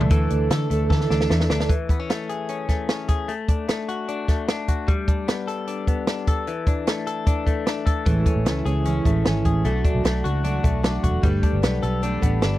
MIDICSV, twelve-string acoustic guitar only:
0, 0, Header, 1, 2, 480
1, 0, Start_track
1, 0, Tempo, 397088
1, 131, Time_signature, 4, 2, 24, 8
1, 15212, End_track
2, 0, Start_track
2, 0, Title_t, "Twelve-string acoustic guitar"
2, 0, Program_c, 0, 25
2, 0, Note_on_c, 0, 52, 79
2, 0, Note_on_c, 0, 57, 74
2, 0, Note_on_c, 0, 62, 74
2, 0, Note_on_c, 0, 69, 80
2, 125, Note_on_c, 0, 50, 74
2, 131, Note_off_c, 0, 52, 0
2, 131, Note_off_c, 0, 62, 0
2, 135, Note_off_c, 0, 57, 0
2, 136, Note_on_c, 0, 52, 70
2, 140, Note_on_c, 0, 57, 70
2, 145, Note_on_c, 0, 62, 78
2, 149, Note_off_c, 0, 69, 0
2, 154, Note_on_c, 0, 69, 72
2, 598, Note_off_c, 0, 52, 0
2, 603, Note_on_c, 0, 52, 70
2, 606, Note_off_c, 0, 50, 0
2, 611, Note_off_c, 0, 57, 0
2, 616, Note_on_c, 0, 57, 70
2, 617, Note_off_c, 0, 62, 0
2, 631, Note_on_c, 0, 62, 71
2, 636, Note_off_c, 0, 69, 0
2, 641, Note_on_c, 0, 69, 76
2, 831, Note_off_c, 0, 69, 0
2, 846, Note_off_c, 0, 52, 0
2, 846, Note_on_c, 0, 69, 68
2, 852, Note_off_c, 0, 57, 0
2, 852, Note_off_c, 0, 62, 0
2, 866, Note_on_c, 0, 62, 57
2, 882, Note_on_c, 0, 57, 53
2, 1082, Note_on_c, 0, 52, 59
2, 1083, Note_off_c, 0, 57, 0
2, 1087, Note_off_c, 0, 69, 0
2, 1094, Note_off_c, 0, 62, 0
2, 1097, Note_on_c, 0, 57, 73
2, 1108, Note_on_c, 0, 62, 64
2, 1119, Note_on_c, 0, 69, 71
2, 1550, Note_off_c, 0, 52, 0
2, 1565, Note_on_c, 0, 52, 57
2, 1573, Note_off_c, 0, 57, 0
2, 1575, Note_off_c, 0, 62, 0
2, 1577, Note_on_c, 0, 57, 61
2, 1589, Note_on_c, 0, 62, 72
2, 1597, Note_off_c, 0, 69, 0
2, 1602, Note_on_c, 0, 69, 66
2, 1786, Note_off_c, 0, 69, 0
2, 1801, Note_on_c, 0, 69, 58
2, 1807, Note_off_c, 0, 52, 0
2, 1808, Note_off_c, 0, 62, 0
2, 1813, Note_off_c, 0, 57, 0
2, 1823, Note_on_c, 0, 62, 53
2, 1840, Note_on_c, 0, 57, 48
2, 2045, Note_off_c, 0, 69, 0
2, 2056, Note_off_c, 0, 62, 0
2, 2065, Note_off_c, 0, 57, 0
2, 9739, Note_on_c, 0, 45, 72
2, 9748, Note_on_c, 0, 52, 61
2, 9756, Note_on_c, 0, 56, 72
2, 9762, Note_on_c, 0, 61, 69
2, 9766, Note_on_c, 0, 64, 65
2, 10200, Note_off_c, 0, 52, 0
2, 10214, Note_on_c, 0, 52, 52
2, 10215, Note_off_c, 0, 56, 0
2, 10222, Note_off_c, 0, 45, 0
2, 10228, Note_off_c, 0, 61, 0
2, 10229, Note_on_c, 0, 56, 53
2, 10235, Note_off_c, 0, 64, 0
2, 10242, Note_on_c, 0, 61, 69
2, 10254, Note_on_c, 0, 64, 69
2, 10439, Note_off_c, 0, 64, 0
2, 10454, Note_on_c, 0, 64, 57
2, 10459, Note_off_c, 0, 52, 0
2, 10459, Note_off_c, 0, 61, 0
2, 10467, Note_off_c, 0, 56, 0
2, 10473, Note_on_c, 0, 61, 55
2, 10489, Note_on_c, 0, 56, 44
2, 10695, Note_off_c, 0, 56, 0
2, 10696, Note_on_c, 0, 52, 57
2, 10699, Note_off_c, 0, 64, 0
2, 10709, Note_off_c, 0, 61, 0
2, 10710, Note_on_c, 0, 56, 60
2, 10725, Note_on_c, 0, 61, 61
2, 10735, Note_on_c, 0, 64, 72
2, 10921, Note_off_c, 0, 64, 0
2, 10935, Note_on_c, 0, 64, 56
2, 10940, Note_off_c, 0, 52, 0
2, 10943, Note_off_c, 0, 61, 0
2, 10947, Note_off_c, 0, 56, 0
2, 10957, Note_on_c, 0, 61, 52
2, 10974, Note_on_c, 0, 56, 50
2, 11177, Note_off_c, 0, 56, 0
2, 11177, Note_on_c, 0, 52, 63
2, 11180, Note_off_c, 0, 64, 0
2, 11187, Note_off_c, 0, 61, 0
2, 11192, Note_on_c, 0, 56, 62
2, 11202, Note_on_c, 0, 61, 60
2, 11214, Note_on_c, 0, 64, 72
2, 11657, Note_on_c, 0, 47, 69
2, 11660, Note_off_c, 0, 52, 0
2, 11665, Note_on_c, 0, 54, 72
2, 11667, Note_off_c, 0, 56, 0
2, 11672, Note_off_c, 0, 61, 0
2, 11672, Note_on_c, 0, 57, 67
2, 11678, Note_off_c, 0, 64, 0
2, 11678, Note_on_c, 0, 62, 77
2, 11683, Note_on_c, 0, 66, 71
2, 12115, Note_off_c, 0, 54, 0
2, 12130, Note_on_c, 0, 54, 59
2, 12138, Note_off_c, 0, 57, 0
2, 12140, Note_off_c, 0, 47, 0
2, 12143, Note_on_c, 0, 57, 58
2, 12148, Note_off_c, 0, 62, 0
2, 12153, Note_off_c, 0, 66, 0
2, 12153, Note_on_c, 0, 62, 65
2, 12167, Note_on_c, 0, 66, 69
2, 12353, Note_off_c, 0, 66, 0
2, 12367, Note_on_c, 0, 66, 56
2, 12375, Note_off_c, 0, 62, 0
2, 12376, Note_off_c, 0, 54, 0
2, 12383, Note_off_c, 0, 57, 0
2, 12389, Note_on_c, 0, 62, 56
2, 12404, Note_on_c, 0, 57, 47
2, 12609, Note_off_c, 0, 57, 0
2, 12609, Note_on_c, 0, 54, 56
2, 12615, Note_off_c, 0, 66, 0
2, 12622, Note_off_c, 0, 62, 0
2, 12623, Note_on_c, 0, 57, 62
2, 12636, Note_on_c, 0, 62, 57
2, 12647, Note_on_c, 0, 66, 72
2, 12835, Note_off_c, 0, 66, 0
2, 12849, Note_on_c, 0, 66, 57
2, 12855, Note_off_c, 0, 54, 0
2, 12855, Note_off_c, 0, 62, 0
2, 12862, Note_off_c, 0, 57, 0
2, 12870, Note_on_c, 0, 62, 51
2, 12887, Note_on_c, 0, 57, 45
2, 13089, Note_off_c, 0, 57, 0
2, 13090, Note_on_c, 0, 54, 62
2, 13095, Note_off_c, 0, 66, 0
2, 13101, Note_off_c, 0, 62, 0
2, 13104, Note_on_c, 0, 57, 61
2, 13116, Note_on_c, 0, 62, 74
2, 13127, Note_on_c, 0, 66, 70
2, 13567, Note_off_c, 0, 54, 0
2, 13572, Note_on_c, 0, 55, 80
2, 13574, Note_off_c, 0, 57, 0
2, 13579, Note_on_c, 0, 57, 74
2, 13584, Note_off_c, 0, 62, 0
2, 13589, Note_on_c, 0, 62, 76
2, 13590, Note_off_c, 0, 66, 0
2, 13595, Note_on_c, 0, 67, 75
2, 13600, Note_on_c, 0, 71, 83
2, 14044, Note_off_c, 0, 57, 0
2, 14049, Note_on_c, 0, 57, 63
2, 14055, Note_off_c, 0, 55, 0
2, 14057, Note_off_c, 0, 62, 0
2, 14058, Note_off_c, 0, 67, 0
2, 14062, Note_on_c, 0, 62, 67
2, 14069, Note_off_c, 0, 71, 0
2, 14073, Note_on_c, 0, 67, 60
2, 14087, Note_on_c, 0, 71, 63
2, 14272, Note_off_c, 0, 71, 0
2, 14286, Note_on_c, 0, 71, 56
2, 14293, Note_off_c, 0, 57, 0
2, 14293, Note_off_c, 0, 67, 0
2, 14300, Note_off_c, 0, 62, 0
2, 14307, Note_on_c, 0, 67, 53
2, 14325, Note_on_c, 0, 62, 47
2, 14526, Note_on_c, 0, 57, 63
2, 14528, Note_off_c, 0, 62, 0
2, 14532, Note_off_c, 0, 71, 0
2, 14538, Note_off_c, 0, 67, 0
2, 14543, Note_on_c, 0, 62, 68
2, 14552, Note_on_c, 0, 67, 68
2, 14564, Note_on_c, 0, 71, 72
2, 14751, Note_off_c, 0, 71, 0
2, 14766, Note_on_c, 0, 71, 63
2, 14772, Note_off_c, 0, 57, 0
2, 14773, Note_off_c, 0, 67, 0
2, 14780, Note_off_c, 0, 62, 0
2, 14787, Note_on_c, 0, 67, 59
2, 14806, Note_on_c, 0, 62, 51
2, 15001, Note_on_c, 0, 57, 63
2, 15002, Note_off_c, 0, 62, 0
2, 15011, Note_off_c, 0, 71, 0
2, 15013, Note_off_c, 0, 67, 0
2, 15016, Note_on_c, 0, 62, 67
2, 15027, Note_on_c, 0, 67, 68
2, 15036, Note_on_c, 0, 71, 72
2, 15212, Note_off_c, 0, 57, 0
2, 15212, Note_off_c, 0, 62, 0
2, 15212, Note_off_c, 0, 67, 0
2, 15212, Note_off_c, 0, 71, 0
2, 15212, End_track
0, 0, End_of_file